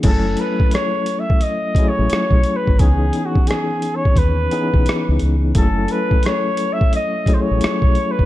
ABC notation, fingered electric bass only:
X:1
M:4/4
L:1/16
Q:"Swing 16ths" 1/4=87
K:F#dor
V:1 name="Fingered electric bass" clef=bass
F,,,2 z8 z A,,, z B,,, z G,,, | C,,2 z6 D,,2 z B,,, z C,, C,,2 | F,,,2 z8 z A,,, z B,,, z G,,, |]